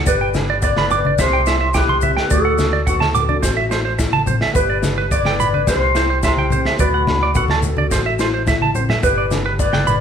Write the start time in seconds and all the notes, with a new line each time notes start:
0.06 G1 B3 G4 B4 D5, kick, maracas
0.21 G5
0.34 D4, snare, high conga, maracas
0.50 D5
0.62 B3 B4 D5, kick, maracas
0.77 B5, snare, high conga
0.90 B3 D6, low conga, maracas
1.05 D4 D5, high conga
1.18 C2 C4 G4 C5 E5, kick, snare, maracas
1.33 G5
1.46 E4 E5, snare, maracas
1.61 E5
1.74 E4 G4 B4 G5, kick, snare, maracas
1.89 C6, high conga
2.01 C4 E5, high conga, low conga, maracas
2.17 G5, snare
2.30 D2 A3 F#4 A4 D5, kick, maracas
2.45 F#5
2.58 D4, snare, high conga, maracas
2.73 D5
2.87 B3 F#4 A4 F#5, kick, maracas
3.00 A5, snare, high conga
3.14 B3 D6, low conga, maracas
3.29 D4 D5, high conga
3.42 A1 C4 C5, kick, snare, maracas
3.57 E5
3.70 E4 C5, snare, maracas
3.85 C5
3.99 E4, muted clean electric guitar stroke, kick, snare, maracas
4.13 A5, high conga
4.26 C4 C5, high conga, low conga, maracas
4.41 E5, snare
4.54 G1 B3 G4 B4, kick, maracas
4.70 D5
4.82 D4, snare, high conga, maracas
4.98 B4
5.11 B3 B4 D5, kick, maracas
5.25 G5, snare, high conga
5.39 B3 B5, low conga, maracas
5.54 D4 B4, high conga
5.67 C2 C4 G4 C5, kick, snare, maracas
5.95 E4 C5, snare, maracas
6.10 C5
6.23 E4 G4 C5 E5, kick, snare, maracas
6.37 G5, high conga
6.50 C4 C5, high conga, low conga, maracas
6.65 E5, snare
6.79 D2 A3 F#4 B4 D5, kick, maracas
6.94 F#5
7.07 D4, snare, high conga, low conga
7.23 D5
7.35 B3 F#4 A4 F#5, kick, low conga, maracas
7.48 A5, snare, high conga
7.63 B3, low conga, maracas
7.77 D4 D5, high conga
7.90 A1 C5, muted nylon-string guitar stroke, kick, snare, maracas
8.06 E5
8.19 E4 C5, snare, maracas
8.34 C5
8.46 E4 E5, kick, snare, high conga, maracas
8.61 A5, high conga
8.75 C4 C5, low conga, maracas
8.89 E5, snare, low conga
9.03 G1 B3 G4 B4, kick, maracas
9.18 D5
9.31 D4, snare, high conga, maracas
9.46 B4
9.59 B3 B4 D5, kick, maracas
9.73 G5, snare, high conga
9.87 B3 B5, low conga, maracas